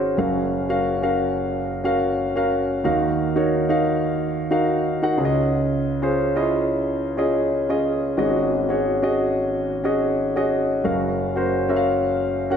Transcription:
0.00 0.14 G#1 medium
0.00 0.14 G#2 medium
0.00 0.17 C#4 medium
0.00 0.18 F#4 medium
0.00 0.20 G#4 medium
0.00 0.18 A#4 medium
0.00 0.20 C5 medium
0.00 0.20 D#5 medium
0.17 2.81 F#1 medium
0.17 2.81 F#2 medium
0.17 0.58 C#4 medium
0.17 0.58 F#4 medium
0.17 0.59 A#4 medium
0.17 0.59 F5 medium
0.69 0.95 C#4 medium
0.69 0.95 F#4 medium
0.69 0.96 A#4 medium
0.69 0.96 F5 medium
1.02 1.69 C#4 medium
1.02 1.69 F#4 medium
1.02 1.70 A#4 medium
1.02 1.70 F5 medium
1.84 2.25 C#4 medium
1.84 2.25 F#4 medium
1.84 2.25 A#4 medium
1.84 2.25 F5 medium
2.36 2.75 C#4 medium
2.36 2.75 F#4 medium
2.36 2.76 A#4 medium
2.36 2.76 F5 medium
2.84 5.14 D#2 medium
2.84 5.14 D#3 medium
2.84 3.25 D#4 medium
2.84 3.25 F#4 medium
2.84 3.25 A#4 medium
2.84 3.25 F5 medium
3.36 3.62 D#4 medium
3.36 3.62 F#4 medium
3.36 3.62 A#4 medium
3.36 3.62 C#5 medium
3.69 4.36 D#4 medium
3.69 4.36 F#4 medium
3.69 4.36 A#4 medium
3.69 4.36 F5 medium
4.51 4.91 D#4 medium
4.51 4.92 F#4 medium
4.51 4.92 A#4 medium
4.51 4.92 F5 medium
5.02 5.18 D#4 medium
5.02 5.18 F#4 medium
5.02 5.18 A#4 medium
5.02 5.18 F#5 medium
5.17 7.81 C#2 medium
5.17 7.80 C#3 medium
5.17 5.84 C#4 medium
5.17 5.84 F4 medium
5.17 5.85 G#4 medium
5.17 5.25 C#5 medium
5.25 5.88 D#5 medium
6.02 6.28 C#4 medium
6.02 6.29 F4 medium
6.02 6.29 G#4 medium
6.02 6.29 C5 medium
6.36 7.02 C#4 medium
6.36 6.42 E4 medium
6.36 7.03 G#4 medium
6.36 7.03 D#5 medium
6.42 7.06 F4 medium
7.17 7.58 C#4 medium
7.17 7.58 F4 medium
7.17 7.59 G#4 medium
7.17 7.59 D#5 medium
7.69 8.08 C#4 medium
7.69 8.09 F4 medium
7.69 8.09 G#4 medium
7.69 8.09 D#5 medium
8.17 10.81 G#1 medium
8.17 10.81 G#2 medium
8.17 8.58 C#4 medium
8.17 8.58 F#4 medium
8.17 8.59 G#4 medium
8.17 8.59 D#5 medium
8.69 8.95 C#4 medium
8.69 8.95 F#4 medium
8.69 8.96 G#4 medium
8.69 8.96 C#5 medium
9.02 9.69 C#4 medium
9.02 9.69 F#4 medium
9.02 9.70 G#4 medium
9.02 9.70 D#5 medium
9.84 10.25 C#4 medium
9.84 10.25 F#4 medium
9.84 10.25 G#4 medium
9.84 10.25 D#5 medium
10.36 10.75 C#4 medium
10.36 10.75 F#4 medium
10.36 10.76 G#4 medium
10.36 10.76 D#5 medium
10.84 12.57 F#1 medium
10.84 12.57 F#2 medium
10.84 11.25 C#4 medium
10.84 11.25 F#4 medium
10.84 11.25 A#4 medium
10.84 11.25 F5 medium
11.36 11.62 C#4 medium
11.36 11.62 F#4 medium
11.36 11.62 A#4 medium
11.36 11.62 C5 medium
11.69 12.36 C#4 medium
11.69 12.36 F#4 medium
11.69 12.36 A#4 medium
11.69 11.76 E5 medium
11.76 12.39 F5 medium
12.50 12.57 C#4 medium
12.50 12.57 F#4 medium
12.50 12.57 A#4 medium
12.50 12.57 F#5 medium

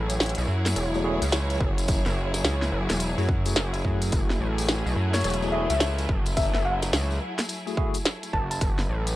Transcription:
0.00 0.35 A1 loud
0.00 9.16 F#3 medium
0.00 9.16 E4 medium
0.00 9.16 G#4 medium
0.00 4.13 C#5 medium
0.10 closed hi-hat medium
0.10 tambourine medium
0.20 snare loud
0.20 closed hi-hat soft
0.20 tambourine medium
0.23 closed hi-hat soft
0.26 closed hi-hat soft
0.29 closed hi-hat medium
0.35 0.46 B1 loud
0.35 closed hi-hat medium
0.35 tambourine soft
0.48 0.75 F#2 loud
0.66 snare medium
0.66 closed hi-hat medium
0.66 tambourine medium
0.76 1.19 E1 medium
0.76 closed hi-hat medium
0.76 tambourine medium
0.94 1.02 A3 medium
0.94 1.02 E4 medium
0.94 1.02 F#4 medium
0.94 1.02 G#4 medium
0.94 tambourine soft
1.04 1.23 A3 medium
1.04 1.23 E4 medium
1.04 1.23 F#4 medium
1.04 1.23 G#4 loud
1.22 1.59 C#2 loud
1.22 closed hi-hat medium
1.22 tambourine medium
1.32 snare loud
1.32 closed hi-hat medium
1.32 tambourine medium
1.50 closed hi-hat soft
1.50 tambourine soft
1.60 2.03 F#1 medium
1.60 kick loud
1.78 closed hi-hat medium
1.78 tambourine medium
1.88 kick loud
1.88 closed hi-hat medium
1.88 tambourine medium
2.06 2.43 F#1 loud
2.06 snare soft
2.06 tambourine soft
2.34 snare soft
2.34 closed hi-hat medium
2.34 tambourine medium
2.44 2.71 C#2 loud
2.44 snare loud
2.44 closed hi-hat medium
2.44 tambourine medium
2.62 snare soft
2.62 tambourine soft
2.72 2.87 F#1 loud
2.90 3.15 E1 loud
2.90 snare soft
2.90 closed hi-hat medium
2.90 tambourine medium
3.00 closed hi-hat medium
3.00 tambourine medium
3.18 3.55 F#2 loud
3.18 3.26 A3 medium
3.18 3.26 E4 medium
3.18 3.26 F#4 medium
3.18 3.26 G#4 medium
3.18 tambourine soft
3.29 kick loud
3.45 3.58 A3 medium
3.45 3.58 E4 medium
3.45 3.58 F#4 medium
3.45 3.58 G#4 medium
3.45 closed hi-hat medium
3.45 tambourine medium
3.56 3.83 F#1 medium
3.56 snare loud
3.56 closed hi-hat medium
3.56 tambourine medium
3.74 closed hi-hat soft
3.74 tambourine soft
3.84 4.11 F#2 loud
3.84 5.38 A3 medium
3.84 5.38 E4 medium
3.84 5.38 F#4 medium
3.84 5.38 G#4 medium
3.84 kick medium
4.02 closed hi-hat medium
4.02 tambourine medium
4.12 4.39 F#1 medium
4.12 8.61 A3 medium
4.12 kick loud
4.12 closed hi-hat medium
4.12 tambourine medium
4.30 snare soft
4.30 tambourine soft
4.40 4.83 A1 loud
4.58 closed hi-hat medium
4.58 tambourine medium
4.69 snare loud
4.69 closed hi-hat medium
4.69 tambourine medium
4.86 4.95 B1 loud
4.86 tambourine soft
4.96 5.23 F#2 loud
5.14 5.21 C#5 medium
5.14 snare medium
5.14 closed hi-hat soft
5.14 tambourine medium
5.21 closed hi-hat soft
5.24 5.68 E1 loud
5.24 5.36 C#5 medium
5.24 closed hi-hat medium
5.24 tambourine medium
5.30 closed hi-hat soft
5.34 closed hi-hat soft
5.42 5.51 A3 medium
5.42 5.51 E4 medium
5.42 5.51 F#4 medium
5.42 5.51 G#4 medium
5.42 tambourine soft
5.52 5.71 A3 loud
5.52 5.71 E4 medium
5.52 5.71 F#4 medium
5.52 5.71 G#4 loud
5.52 5.64 E5 medium
5.70 6.07 C#2 loud
5.70 5.77 E5 medium
5.70 closed hi-hat medium
5.70 tambourine medium
5.80 snare loud
5.80 closed hi-hat medium
5.80 tambourine medium
5.98 closed hi-hat soft
5.98 tambourine soft
6.09 6.52 F#1 medium
6.09 kick loud
6.26 closed hi-hat soft
6.26 tambourine medium
6.37 6.48 E5 medium
6.37 kick loud
6.37 closed hi-hat medium
6.37 tambourine medium
6.54 6.91 F#1 loud
6.54 6.61 E5 medium
6.54 snare soft
6.54 tambourine soft
6.65 6.87 F#5 medium
6.82 snare soft
6.82 closed hi-hat medium
6.82 tambourine medium
6.93 7.19 C#2 loud
6.93 snare loud
6.93 closed hi-hat medium
6.93 tambourine medium
7.11 tambourine soft
7.38 snare medium
7.38 closed hi-hat medium
7.38 tambourine medium
7.49 closed hi-hat medium
7.49 tambourine medium
7.67 7.75 A3 medium
7.67 7.75 E4 medium
7.67 7.75 F#4 medium
7.67 7.75 G#4 medium
7.67 tambourine soft
7.77 7.96 A3 medium
7.77 7.96 E4 medium
7.77 7.96 F#4 medium
7.77 7.96 G#4 loud
7.77 kick loud
7.94 closed hi-hat medium
7.94 tambourine medium
8.05 snare loud
8.05 closed hi-hat medium
8.05 tambourine medium
8.23 closed hi-hat soft
8.23 tambourine soft
8.33 8.60 F#1 loud
8.33 8.45 A5 medium
8.33 kick medium
8.51 8.58 A5 medium
8.51 closed hi-hat medium
8.51 tambourine medium
8.61 8.88 F#1 loud
8.61 9.16 B4 medium
8.61 kick loud
8.61 closed hi-hat medium
8.61 tambourine medium
8.79 snare soft
8.79 tambourine soft
8.89 9.16 A1 loud
9.07 closed hi-hat medium
9.07 tambourine medium

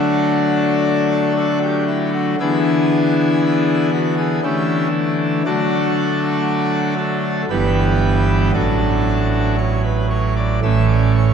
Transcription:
0.00 2.36 D3 medium
0.00 2.35 F#3 medium
0.00 2.36 A3 medium
0.00 1.33 D4 medium
0.00 1.33 F#4 medium
0.00 1.32 A4 loud
1.37 1.58 D4 medium
1.37 1.59 F#4 medium
1.37 1.58 A4 medium
1.62 1.84 G4 medium
1.88 2.10 E4 medium
2.13 2.35 F#4 medium
2.40 4.40 D3 medium
2.40 4.40 E3 medium
2.40 4.40 B3 medium
2.40 3.89 D4 medium
2.40 3.89 E4 medium
2.40 3.89 G#4 loud
3.93 4.15 F#4 loud
4.18 4.40 G#4 loud
4.44 5.42 D3 medium
4.44 5.43 E3 medium
4.44 5.42 A3 medium
4.44 4.87 C#4 medium
4.44 4.87 E4 medium
4.44 4.87 G4 medium
5.45 7.45 D3 medium
5.45 7.45 F#3 medium
5.45 7.45 A3 medium
5.45 6.94 D4 medium
5.45 6.94 F#4 medium
5.45 6.94 A4 loud
6.98 7.42 A4 medium
7.50 8.51 G1 medium
7.50 8.51 G2 medium
7.50 8.51 E3 medium
7.50 8.51 G3 medium
7.50 8.51 B3 medium
7.50 8.51 E4 medium
7.50 8.51 G4 medium
7.50 8.51 B4 medium
8.53 10.60 A1 medium
8.53 10.60 A2 medium
8.53 10.60 F#3 medium
8.53 9.56 D4 medium
8.53 9.56 F#4 medium
8.53 9.56 A4 medium
9.58 9.81 C#5 medium
9.84 10.07 B4 medium
10.10 10.33 C#5 medium
10.36 10.59 D5 medium
10.63 11.34 A1 medium
10.63 11.34 A2 medium
10.63 11.34 E3 soft
10.63 11.34 A3 soft
10.63 11.34 C#4 soft
10.63 10.86 E5 medium
10.89 11.12 D5 medium
11.16 11.34 C#5 medium

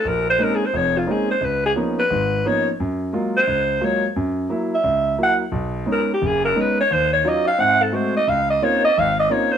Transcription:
0.05 0.34 A#1 medium
0.05 0.28 A#4 medium
0.30 0.44 C5 loud
0.39 0.62 G#3 medium
0.39 0.62 A#3 medium
0.39 0.62 C4 medium
0.39 0.63 C#4 soft
0.39 0.63 D#4 medium
0.43 0.57 A#4 loud
0.55 0.67 G#4 medium
0.66 0.78 C5 medium
0.74 1.03 F1 medium
0.74 1.03 F2 medium
0.74 0.99 C#5 loud
0.98 1.13 F4 medium
1.07 1.30 G#3 soft
1.07 1.30 A#3 medium
1.07 1.30 C4 medium
1.07 1.31 C#4 soft
1.07 1.31 D#4 medium
1.11 1.30 G#4 medium
1.31 1.46 C5 medium
1.41 1.71 C#2 medium
1.41 1.65 B4 medium
1.66 1.73 G#4 medium
1.76 1.99 F3 medium
1.76 1.99 A#3 medium
1.76 1.99 B3 medium
1.76 1.99 C#4 medium
1.76 2.00 D#4 medium
1.99 2.49 B4 medium
2.10 2.40 G#1 medium
2.10 2.40 G#2 medium
2.45 2.68 F3 medium
2.45 2.68 A#3 medium
2.45 2.68 B3 soft
2.45 2.68 C#4 medium
2.45 2.68 D#4 medium
2.45 2.68 C#5 medium
2.80 3.09 F#2 medium
3.13 3.36 F#3 medium
3.13 3.36 G#3 medium
3.13 3.37 A#3 medium
3.13 3.37 F4 medium
3.37 3.87 C5 loud
3.47 3.77 C#2 medium
3.81 4.04 F#3 medium
3.81 4.04 G#3 medium
3.81 4.05 A#3 medium
3.81 4.05 F4 medium
3.85 4.05 C#5 medium
4.16 4.46 F#2 medium
4.49 4.73 F#3 medium
4.49 4.73 A#3 medium
4.49 4.73 E4 medium
4.75 5.17 E5 medium
4.84 5.14 C#2 medium
5.18 5.42 F#3 medium
5.18 5.42 A#3 soft
5.18 5.42 E4 medium
5.23 5.35 F#5 medium
5.52 5.82 B1 medium
5.86 6.10 G#3 medium
5.86 6.10 B3 soft
5.86 6.10 C#4 medium
5.86 6.10 D#4 medium
5.92 6.10 A#4 medium
6.14 6.28 G4 medium
6.22 6.51 F#1 medium
6.26 6.44 G#4 medium
6.45 6.62 A#4 medium
6.56 6.79 G#3 medium
6.56 6.79 B3 medium
6.56 6.79 C#4 soft
6.56 6.79 D#4 medium
6.61 6.80 B4 medium
6.80 6.95 C#5 loud
6.91 7.20 D#2 medium
6.91 7.12 C5 medium
7.13 7.29 C#5 medium
7.24 7.47 F#3 medium
7.24 7.48 C#4 medium
7.24 7.48 D#4 medium
7.24 7.48 F4 medium
7.24 7.47 D#5 medium
7.47 7.61 F5 loud
7.58 7.88 G#2 medium
7.58 7.88 C4 medium
7.58 7.84 F#5 loud
7.82 7.97 A4 medium
7.92 8.16 G#3 medium
7.92 8.16 A3 soft
7.92 8.16 C4 medium
7.92 8.16 F#4 medium
7.92 8.16 C5 medium
8.16 8.31 D#5 medium
8.27 8.57 C#2 medium
8.27 8.49 F5 loud
8.50 8.65 D#5 medium
8.62 8.85 A#3 medium
8.62 8.85 C4 medium
8.62 8.85 C#4 medium
8.62 8.85 D#4 medium
8.62 8.85 F4 medium
8.62 8.84 C#5 loud
8.84 9.01 D#5 loud
8.98 9.26 G#1 medium
8.98 9.19 F5 loud
9.19 9.33 D#5 medium
9.30 9.53 A#3 medium
9.30 9.53 C4 medium
9.30 9.53 C#4 medium
9.30 9.54 D#4 medium
9.30 9.54 F4 medium
9.30 9.53 C#5 medium
9.52 9.58 C5 loud

